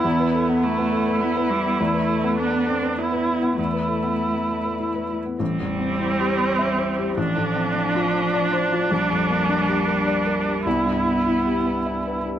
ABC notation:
X:1
M:3/4
L:1/16
Q:1/4=102
K:Am
V:1 name="Felt piano"
[E,,B,] B A B, A, B, A B E B E B, | E,, B A B, A, B, A B E B E B, | E,, B A B, A, B, A B E B E B, | (3A,,,2 E,,2 C2 (3E2 G2 c2 (3e2 c2 G2 |
(3A,,,2 A,,2 C2 (3D2 F2 c2 (3d2 c2 F2 | (3_B,,,2 F,,2 _B,2 (3D2 G2 _B2 (3d2 B2 G2 | (3C,,2 G,,2 B,2 (3E2 G2 B2 (3e2 B2 G2 |]
V:2 name="Viola"
E4 E8- | E4 D4 E4 | E8- E2 z2 | C12 |
D12- | D12 | E8- E2 z2 |]
V:3 name="Cello"
B,4 A,4 B,2 G,2 | A,4 B,2 C2 B,4 | A,8- A,2 z2 | G,12 |
F,12 | G,12 | B,8- B,2 z2 |]